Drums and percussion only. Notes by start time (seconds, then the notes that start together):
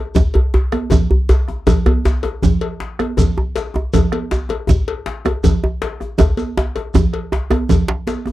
0.15 bombo low, djembe tone, djembe bass, low conga, shekere
0.34 cowbell, djembe bass
0.54 bombo rim, djembe slap, djembe bass
0.72 bombo rim, cowbell, djembe tone, high conga
0.90 bombo rim, bombo low, cowbell, djembe tone, djembe bass, low conga, shekere
1.10 djembe slap, djembe bass
1.29 cowbell, djembe slap, djembe bass, shekere
1.48 bombo rim, high conga, djembe tone
1.67 bombo low, cowbell, djembe tone, djembe bass, low conga, shekere
1.86 bombo rim, cowbell, high conga, djembe bass
2.05 djembe slap, djembe bass, shekere
2.23 cowbell, djembe slap, djembe tone, high conga
2.42 bombo low, djembe bass, low conga, shekere
2.61 cowbell
2.80 bombo rim, djembe slap
2.99 bombo rim, cowbell, djembe tone, high conga
3.17 bombo rim, bombo low, cowbell, djembe bass, low conga, shekere
3.36 djembe slap, djembe tone
3.56 cowbell, djembe slap, shekere
3.74 bombo rim, djembe tone, high conga
3.76 djembe tone
3.94 bombo low, cowbell, low conga, djembe bass, shekere
4.12 bombo rim, cowbell, high conga
4.31 djembe slap, djembe tone, shekere
4.49 cowbell, djembe slap, djembe tone, high conga
4.67 bombo low, djembe tone, djembe bass, low conga, shekere
4.88 cowbell
5.06 bombo rim, djembe slap
5.25 bombo rim, cowbell, djembe tone, high conga
5.43 bombo rim, bombo low, cowbell, djembe bass, low conga, shekere
5.64 djembe slap, djembe tone
5.82 cowbell, djembe slap
6.00 bombo rim, high conga, djembe tone
6.19 bombo low, cowbell, djembe slap, high conga, djembe tone, low conga, djembe bass, shekere
6.37 cowbell, djembe slap, high conga, shekere
6.57 djembe slap, djembe tone
6.75 bombo rim, cowbell, djembe slap, high conga, djembe tone
6.94 bombo rim, bombo low, djembe tone, low conga, djembe bass, shekere
7.13 bombo rim, cowbell
7.32 bombo rim, djembe slap, djembe tone
7.50 bombo rim, cowbell, djembe tone, high conga
7.69 bombo rim, bombo low, cowbell, high conga, low conga, djembe bass, shekere
7.88 djembe slap, low conga
8.07 bombo rim, cowbell, djembe slap, high conga, shekere
8.26 bombo rim, djembe slap, high conga, djembe tone